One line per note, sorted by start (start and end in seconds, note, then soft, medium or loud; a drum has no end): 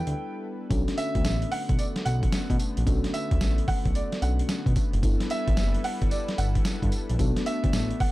0.00 0.67 G3 medium
0.00 0.66 B3 medium
0.00 0.67 D4 medium
0.00 0.67 E4 medium
0.00 0.67 A4 medium
0.00 0.67 B4 medium
0.00 0.40 G5 loud
0.07 0.14 D2 medium
0.07 closed hi-hat medium
0.70 0.83 B1 loud
0.70 4.99 D3 medium
0.70 4.99 A3 medium
0.70 4.99 B3 medium
0.70 2.82 C#4 medium
0.70 2.83 D4 medium
0.70 2.83 F#4 medium
0.70 2.84 A4 medium
0.70 kick loud
0.70 closed hi-hat medium
0.70 tambourine medium
0.88 snare medium
0.88 closed hi-hat medium
0.98 1.53 E5 loud
0.98 closed hi-hat medium
0.98 tambourine medium
1.15 1.26 D2 loud
1.15 kick medium
1.15 closed hi-hat medium
1.25 1.44 A1 medium
1.25 snare loud
1.25 closed hi-hat medium
1.25 tambourine medium
1.42 closed hi-hat soft
1.51 1.79 F#5 loud
1.51 open hi-hat medium
1.69 1.76 B1 medium
1.69 kick loud
1.69 closed hi-hat medium
1.78 1.85 D5 medium
1.78 closed hi-hat medium
1.78 tambourine medium
1.96 snare medium
1.96 closed hi-hat soft
2.05 2.25 B1 loud
2.05 2.56 F#5 loud
2.05 closed hi-hat medium
2.05 tambourine medium
2.23 kick medium
2.23 closed hi-hat medium
2.32 snare loud
2.32 closed hi-hat medium
2.32 tambourine medium
2.50 2.57 B2 loud
2.50 kick loud
2.50 closed hi-hat medium
2.59 closed hi-hat medium
2.59 tambourine medium
2.77 2.84 A#1 medium
2.77 closed hi-hat medium
2.86 2.99 B1 loud
2.86 4.19 C#4 medium
2.86 4.19 D4 medium
2.86 4.20 F#4 medium
2.86 4.20 A4 loud
2.86 kick loud
2.86 closed hi-hat medium
2.86 tambourine medium
3.04 snare medium
3.04 closed hi-hat medium
3.14 3.64 E5 loud
3.14 closed hi-hat medium
3.14 tambourine medium
3.31 3.38 D2 loud
3.31 kick medium
3.31 closed hi-hat medium
3.41 3.60 A1 medium
3.41 snare loud
3.41 closed hi-hat medium
3.41 tambourine loud
3.58 closed hi-hat soft
3.68 3.96 F#5 loud
3.68 kick loud
3.68 open hi-hat medium
3.85 3.92 B1 medium
3.85 kick loud
3.85 closed hi-hat medium
3.95 4.23 D5 medium
3.95 closed hi-hat medium
3.95 tambourine medium
4.12 snare medium
4.12 closed hi-hat medium
4.22 4.41 B1 loud
4.22 5.03 C#4 medium
4.22 5.02 D4 soft
4.22 5.03 F#4 soft
4.22 5.04 A4 medium
4.22 4.72 F#5 medium
4.22 closed hi-hat medium
4.22 tambourine medium
4.39 closed hi-hat medium
4.49 snare loud
4.49 closed hi-hat medium
4.49 tambourine medium
4.66 4.73 B2 medium
4.66 kick loud
4.66 closed hi-hat medium
4.76 kick loud
4.76 closed hi-hat medium
4.76 tambourine medium
4.93 5.00 F#1 loud
4.93 closed hi-hat medium
5.02 5.15 G1 loud
5.02 7.17 G3 medium
5.02 7.15 B3 medium
5.02 7.15 D4 medium
5.02 7.17 E4 medium
5.02 7.16 E4 medium
5.02 7.17 A4 medium
5.02 7.16 A4 medium
5.02 7.17 B4 medium
5.02 kick loud
5.02 closed hi-hat medium
5.02 tambourine medium
5.20 snare medium
5.20 closed hi-hat medium
5.30 5.86 E5 loud
5.30 closed hi-hat medium
5.30 tambourine medium
5.48 5.54 A1 loud
5.48 kick loud
5.48 closed hi-hat medium
5.57 5.76 F#1 loud
5.57 snare loud
5.57 closed hi-hat medium
5.57 tambourine medium
5.74 closed hi-hat soft
5.84 6.09 F#5 loud
5.84 open hi-hat medium
6.02 6.09 G1 medium
6.02 kick loud
6.02 closed hi-hat medium
6.11 6.39 D5 medium
6.11 closed hi-hat medium
6.11 tambourine medium
6.28 snare medium
6.28 closed hi-hat soft
6.38 6.57 G1 loud
6.38 6.88 F#5 loud
6.38 closed hi-hat medium
6.38 tambourine medium
6.55 kick medium
6.55 closed hi-hat medium
6.65 snare loud
6.65 closed hi-hat medium
6.65 tambourine medium
6.82 6.89 G2 medium
6.82 kick loud
6.82 closed hi-hat medium
6.92 closed hi-hat medium
6.92 tambourine medium
7.09 7.17 A#1 medium
7.09 closed hi-hat medium
7.18 7.32 B1 loud
7.18 8.12 A3 medium
7.18 8.12 B3 medium
7.18 8.12 D4 medium
7.18 8.12 F#4 medium
7.18 8.12 A4 loud
7.18 kick loud
7.18 closed hi-hat medium
7.18 tambourine medium
7.36 snare medium
7.36 closed hi-hat medium
7.46 7.97 E5 loud
7.46 closed hi-hat medium
7.46 tambourine medium
7.64 7.71 D2 loud
7.64 kick medium
7.64 closed hi-hat medium
7.73 7.93 A1 medium
7.73 snare loud
7.73 closed hi-hat medium
7.73 tambourine loud
7.91 closed hi-hat soft
8.00 8.12 F#5 loud
8.00 kick loud
8.00 open hi-hat medium